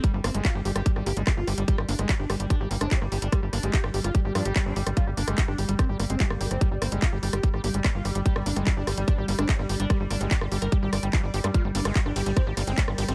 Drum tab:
RD |----------------|----------------|----------------|----------------|
HH |x-oxx-oxx-oxx-ox|x-oxx-oxx-oxx-ox|x-oxx-oxx-oxx-ox|x-oxx-oxx-oxx-ox|
CP |----x-------x---|----x-------x---|----x-------x---|----x-------x---|
SD |--r-r--r-r--r-r-|-r-r--r-r--r-r--|r-r--r-r--r-r--r|r--r-r--r-r--r-r|
BD |o---o---o---o---|o---o---o---o---|o---o---o---o---|o---o---o---o---|

RD |----------------|----------------|----------------|--x---x---x---x-|
HH |x-oxx-oxx-oxx-ox|x-oxx-oxx-oxx-ox|x-oxx-oxx-oxx-ox|x-oxx-oxx-oxx-ox|
CP |----x-------x---|----x-------x---|----x-------x---|----x-------x---|
SD |--r-r--r-r--r-r-|-r-r--r-r--r-r--|r-r--r-r--r-r--r|r--r-r--r-r--r-r|
BD |o---o---o---o---|o---o---o---o---|o---o---o---o---|o---o---o---o---|